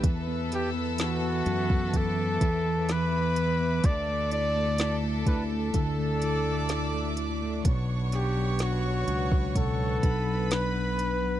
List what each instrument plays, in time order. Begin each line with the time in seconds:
Already playing: string section B4 E5
0.03 fingered electric bass E2, tine electric piano E3, violin section A4 A5, string section E6, kick, closed hi-hat
0.27 tine electric piano B3
0.51 tine electric piano E3, flugelhorn G4, snare, closed hi-hat
0.74 tine electric piano B3
0.98 tine electric piano E3, flugelhorn F#4, snare, closed hi-hat
1.22 tine electric piano B3
1.46 fingered electric bass F#2, tine electric piano E3, closed hi-hat
1.70 tine electric piano B3, kick
1.93 tine electric piano E3, flugelhorn A4, string section D6, kick, closed hi-hat
2.18 tine electric piano B3
2.41 fingered electric bass E2, tine electric piano E3, kick, closed hi-hat
2.66 tine electric piano B3
2.88 tine electric piano E3, violin section B4 B5, flugelhorn B4, snare, closed hi-hat
3.13 tine electric piano B3
3.36 tine electric piano E3, closed hi-hat
3.60 tine electric piano B3
3.84 fingered electric bass D2, string section D4 A4, violin section A4 A5, flugelhorn D5, kick, closed hi-hat
4.09 tine electric piano A3
4.31 tine electric piano E4, flugelhorn D5, closed hi-hat
4.56 tine electric piano A3
4.78 tine electric piano E4, snare, closed hi-hat
5.03 tine electric piano A3
5.26 fingered electric bass D2, tine electric piano E4, flugelhorn B4, kick, closed hi-hat
5.52 tine electric piano A3
5.74 fingered electric bass D2, tine electric piano D3, flugelhorn A4, string section E6, kick, closed hi-hat
5.98 tine electric piano A3
6.22 tine electric piano E4, violin section D5 D6, closed hi-hat
6.47 tine electric piano A3
6.69 tine electric piano E4, snare, closed hi-hat
6.94 tine electric piano A3
7.17 tine electric piano E4, closed hi-hat
7.42 tine electric piano A3
7.64 fingered electric bass B1, tine electric piano B2, string section B4 F#5, violin section C#5 C#6, kick, closed hi-hat
8.12 tine electric piano D4, flugelhorn G4, snare, closed hi-hat
8.37 tine electric piano F#3
8.59 tine electric piano D4, flugelhorn F#4, snare, closed hi-hat
8.84 tine electric piano F#3
9.08 fingered electric bass C#2, tine electric piano D4, closed hi-hat
9.31 tine electric piano F#3, kick
9.55 tine electric piano B2, flugelhorn A4, kick, closed hi-hat
9.79 tine electric piano F#3
10.03 fingered electric bass B1, tine electric piano D4, violin section B4 B5, kick, closed hi-hat
10.28 tine electric piano F#3
10.51 tine electric piano D4, flugelhorn B4, snare, closed hi-hat
10.75 tine electric piano F#3
10.98 tine electric piano D4, closed hi-hat
11.23 tine electric piano F#3